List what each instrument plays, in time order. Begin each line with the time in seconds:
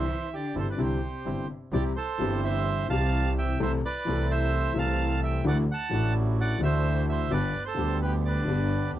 Already playing: cello E3, bandoneon C5 E5
0.34 cello D3, bandoneon G4 D5
0.55 double bass G1, grand piano G1 G2 D3 G3 C4 E4, bandoneon C4 D4 E4 A4
0.59 cello C3, bandoneon C5
0.70 cello D3, bandoneon B4 D5
0.78 double bass C2, grand piano C2 C3 D3 G3 C4 E4, cello C3, bandoneon C4 D4 E4 G4
0.83 bandoneon C5
1.25 grand piano G1 G2 D3 G3 C4 E4, double bass G1, bandoneon C4 D4 E4
1.72 double bass C2, grand piano C2 C3 E3 G3 C4 G4, bandoneon C4 E4 G4 D5
1.96 bandoneon A4 C5
2.18 double bass G1, grand piano G1 G2 E3 G3 C4 G4, bandoneon C4 E4 G4
2.44 bandoneon C5 E5
2.88 double bass C2, grand piano C2 C3 E3 G3 C4, bandoneon E3 C4 G4 F5 A5
2.92 grand piano G4
3.38 bandoneon E5 G5
3.60 double bass C2, grand piano C2 C3 E3 A3 C4 A4, bandoneon C4 E4 A4 C5 E5
3.85 bandoneon B4 D5
4.05 double bass C2, grand piano C2 C3 E3 A3 C4 A4, bandoneon C4 E4 A4
4.31 bandoneon C5 E5
4.73 grand piano C2 C3 E3 A3 C4 A4, double bass C2, bandoneon E3 C4 A4
4.78 bandoneon F5 A5
5.23 bandoneon E5 G5
5.44 double bass D2, grand piano D2 D3 E3 A3 D4 F#4, bandoneon D4 E4 F#4 D5
5.48 bandoneon F#5
5.71 bandoneon F#5 A5
5.89 double bass A1, grand piano A1 A2 E3 A3 D4, bandoneon D4 E4 F#4
5.94 grand piano F#4
6.41 bandoneon D5 F#5
6.59 grand piano D2 D3 E3 A3 D4, double bass D2, bandoneon D4 E4 F#4
6.63 grand piano F#4, bandoneon C5 E5
7.09 bandoneon C5 E5
7.30 double bass G1, grand piano G1 G2 D3 G3 B3 G4, bandoneon B3 D4 G4 B4 D5
7.65 bandoneon A4 C5
7.76 grand piano D2 D3 G3 B3 G4, double bass D2, bandoneon B3 D4 G4
8.02 bandoneon G4 B4
8.24 cello D3, bandoneon B4 D5
8.45 grand piano G1 G2 D3 G3 B3 G4, double bass G1, bandoneon B3 D4 G4
8.94 double bass D#2